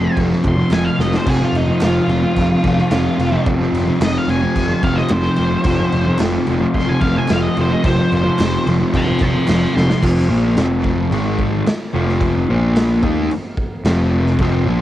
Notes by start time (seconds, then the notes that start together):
Already playing: F2 C6
0.02 C3 F3
0.17 F1, kick, crash
0.31 C3 F3, snare
0.44 F1 F2 C3 F3 C6, kick, clap, crash
0.57 C3 F3
0.71 F1 F2 C3 G#5, snare, clap, crash
0.75 F3
0.85 F5
0.99 F1 F2 C3 D#5, snare
1.04 F3
1.12 C3 F3, snare
1.17 C5
1.26 F1 F2 C3 F3 G#4, kick, crash
1.40 C3 F3
1.45 F4
1.52 F1 D#4, crash
1.67 C3 F3
1.80 F1 F2 C3 F3, snare, clap, crash
1.84 F4
2.08 F1 F2 C3, crash
2.12 F3
2.23 C3 F3
2.36 F1, kick, crash
2.50 C3 F3
2.63 F1 F2 C3 F3, kick, crash
2.77 F3, snare
2.81 C3
2.90 F1 F2 C3 F3, snare, clap, crash
3.17 F1 F2 C3 F3, crash
3.32 C3 F3
3.45 F1 F2 C3 F3, kick, crash
3.58 C3 F3
3.72 F1, crash
3.85 C3 F3
3.99 F1 F2 C3 F3, snare, clap, crash
4.05 D#5
4.18 F5
4.26 F1 F2 C3 F3 G#5, crash
4.41 C3 F3
4.55 F1, kick, crash
4.69 F3
4.73 C3
4.82 F1 F2 C3 F3 F5, kick, crash
4.96 F3 D#5, snare
5.00 C3
5.09 F1 F2 C3 C5, snare, clap, crash
5.14 F3
5.36 F1 F2 C3 F3, crash
5.50 C3 F3
5.63 F1 F2 C3 F3, kick, crash
5.77 C3 F3
5.92 F1, crash
6.06 C3 F3
6.18 F1 F2 C3 F3, snare, clap, crash
6.46 F1 F2 C3 F3, crash
6.60 C3 F3
6.74 F1 C6, kick, crash
6.88 C3 F3 G#5
7.01 F1 F2 C3 F5, kick, crash
7.06 F3
7.16 C3 F3 G#5
7.28 F1 F2 C3 F3, snare, clap, crash
7.33 F5
7.42 D#5
7.56 F1 F2 C3 F3, crash
7.60 C5
7.71 C3 F3 D#5
7.84 F1 F2 C3 F3 C5, kick, crash
7.97 C3 F3
8.12 F1 C5, crash
8.24 C3 F3
8.39 F1 F2 C3 F3, snare, clap, crash
8.65 F1 F2 C3, crash
8.69 F3
8.79 C3 F3
8.93 F1 A5 C6, kick, crash
9.06 C3 F3
9.19 F1 F2 C3 A5, kick, clap, crash
9.24 F3 C6
9.33 C3 F3
9.47 F1 F2 C3 F3 C6, snare, clap, crash
9.51 A5
9.73 F1 F2 C3 F3 C6, snare
9.88 C3 F3, snare
10.02 F1 F2 C3 F3, kick, crash
10.29 A#1 A#2 F3 A#3
10.57 F1 F2 C3 F3, snare, crash
10.84 kick
11.11 G#1 G#2 D#3 G#3, crash
11.39 kick
11.66 muted distorted electric guitar stroke, snare, crash
11.93 F1 F2 C3 F3
12.09 snare
12.21 kick, crash
12.49 A#1 A#2 F3 A#3
12.76 snare, crash
13.03 D#2 D#3 A#3 D#4, kick
13.31 muted picked electric bass stroke, muted distorted electric guitar stroke, crash
13.57 kick
13.84 F1 F2 C3 F3, snare, crash
14.26 snare
14.38 F1 F2 C3 F3, kick, crash
14.66 A#1 A#2 F3 A#3